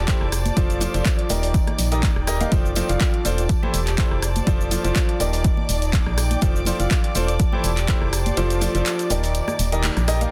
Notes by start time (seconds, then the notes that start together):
Already playing: E1 G4 C5 D5 A5 D6
0.08 E4 G4 A4 C5, kick, clap, closed hi-hat, tambourine, high conga, cabasa
0.21 F1, cross-stick
0.32 F4, cross-stick, open hi-hat, tambourine, cabasa
0.46 closed hi-hat, tambourine, high conga, cabasa
0.57 F1 F3 D4 F4 A4 C5, kick, closed hi-hat, cabasa
0.70 D5, closed hi-hat, cabasa
0.81 F3 D4 F4 A4 C5, open hi-hat, tambourine, high conga, cabasa
0.94 F1 F3 D4 F4 A4 C5, closed hi-hat, tambourine, cabasa
1.05 kick, clap, closed hi-hat, tambourine, cabasa
1.19 closed hi-hat
1.29 D#1 D#3 D#4 G4 A#4 D5, open hi-hat, tambourine, high conga, cabasa
1.43 open hi-hat, tambourine, cabasa
1.54 D#4, kick, closed hi-hat, tambourine, cabasa
1.67 cross-stick, closed hi-hat, high conga
1.78 A#1, open hi-hat, tambourine, cabasa
1.87 G5
1.92 D#3 D#4 G4 A#4 D#5, closed hi-hat, tambourine, cabasa
2.03 kick, clap, closed hi-hat, tambourine, high conga, cabasa
2.16 D#1, cross-stick
2.27 D#4 G4 A#4 D#5, cross-stick, open hi-hat, tambourine, cabasa
2.41 D#4 G4 A#4 F5, closed hi-hat, tambourine, high conga, cabasa
2.52 F1 F3 D4 F4 A4 C5 D5 D6, kick, closed hi-hat, tambourine, cabasa
2.66 cabasa
2.75 F3 D4 F4 A4 C5, open hi-hat, tambourine, high conga, cabasa
2.88 F1 F3 D4 F4 A4 F5, closed hi-hat, tambourine, cabasa
2.96 A5
3.01 kick, clap, closed hi-hat, tambourine, cabasa
3.14 closed hi-hat
3.25 E1 D4 F4 A4 C5, open hi-hat, tambourine, high conga, cabasa
3.38 closed hi-hat, tambourine, cabasa
3.49 G4, kick, closed hi-hat, tambourine, cabasa
3.63 E3 E4 G4 A4 C5, high conga
3.74 E1, open hi-hat, tambourine, cabasa
3.83 C5, tambourine
3.87 clap, closed hi-hat, cabasa
3.97 E4 G4 A4 C5, kick, clap, closed hi-hat, tambourine, high conga, cabasa
4.11 F1, cross-stick
4.22 F4, cross-stick, open hi-hat, tambourine, cabasa
4.35 closed hi-hat, tambourine, high conga, cabasa
4.47 F1 F3 D4 F4 A4 C5, kick, closed hi-hat, tambourine, cabasa
4.54 D5
4.61 cabasa
4.71 F3 D4 F4 A4 C5, open hi-hat, tambourine, high conga, cabasa
4.85 F1 F3 D4 F4 A4 C5, closed hi-hat, tambourine, cabasa
4.96 kick, clap, closed hi-hat, tambourine, cabasa
5.09 closed hi-hat
5.20 D#1 D#3 D#4 G4 A#4 D5, open hi-hat, tambourine, high conga, cabasa
5.33 open hi-hat, tambourine, cabasa
5.44 D#4, kick, closed hi-hat, tambourine, cabasa
5.57 high conga
5.69 D#1, open hi-hat, tambourine, cabasa
5.82 closed hi-hat, tambourine, cabasa
5.89 G5
5.93 kick, clap, closed hi-hat, tambourine, high conga, cabasa
6.06 A#1, cross-stick
6.18 cross-stick, open hi-hat, tambourine, cabasa
6.31 closed hi-hat, tambourine, high conga, cabasa
6.41 F1 F3 D4 F4 A4 C5, kick, closed hi-hat, tambourine, cabasa
6.56 cabasa
6.65 F3 D4 F4 A4 C5, open hi-hat, tambourine, high conga, cabasa
6.80 F1 F3 D4 F4 A4 F5, closed hi-hat, tambourine, cabasa
6.86 A5
6.91 kick, clap, closed hi-hat, tambourine, cabasa
7.04 closed hi-hat
7.15 E1 D4 F4 A4 C5, open hi-hat, tambourine, high conga, cabasa
7.28 closed hi-hat, tambourine, cabasa
7.39 G4, kick, closed hi-hat, tambourine, cabasa
7.52 E3 E4 G4 A4 C5, high conga
7.64 E1, open hi-hat, tambourine, cabasa
7.73 C5, tambourine
7.77 clap, closed hi-hat, cabasa
7.88 E4 G4 A4 C5, kick, clap, closed hi-hat, tambourine, high conga, cabasa
8.02 F1, cross-stick
8.13 F4, cross-stick, open hi-hat, tambourine, cabasa
8.26 closed hi-hat, tambourine, high conga, cabasa
8.37 F1 F3 D4 F4 A4 C5, closed hi-hat, tambourine, cabasa
8.50 closed hi-hat, tambourine, cabasa
8.61 F3 D4 F4 A4 C5, open hi-hat, tambourine, high conga, cabasa
8.68 D5
8.75 F1 F3 D4 F4 A4 C5, closed hi-hat, tambourine, cabasa
8.86 clap, closed hi-hat, tambourine, cabasa
8.99 closed hi-hat, tambourine, cabasa
9.10 D#1 D#3 D#4 G4 A#4 D5, open hi-hat, tambourine, high conga, cabasa
9.23 open hi-hat, tambourine, cabasa
9.35 D#4, closed hi-hat, tambourine, cabasa
9.48 cross-stick, tambourine, high conga, cabasa
9.59 D#1, open hi-hat, tambourine, cabasa
9.72 D#3 D#4 G4 A#4 D#5, closed hi-hat, cabasa
9.79 G5
9.84 clap, closed hi-hat, tambourine, high conga, cabasa
9.97 A#1, cross-stick, closed hi-hat, tambourine, cabasa
10.08 D#4 G4 A#4 D#5, cross-stick, open hi-hat, tambourine, cabasa
10.21 D#4 G4 A#4 F5, closed hi-hat, tambourine, high conga, cabasa